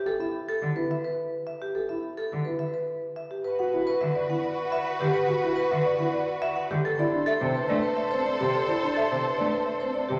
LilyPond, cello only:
\new Staff \with { instrumentName = "Cello" } { \clef bass \time 3/4 \key e \phrygian \tempo 4 = 106 r4 d16 r4. r16 | r4 d16 r4. r16 | \key g \major r4 d16 r4. d16 | r4 d16 r4. d16 |
r4 c16 r16 a16 r4 c16 | r4 c16 r16 a16 r4 c16 | }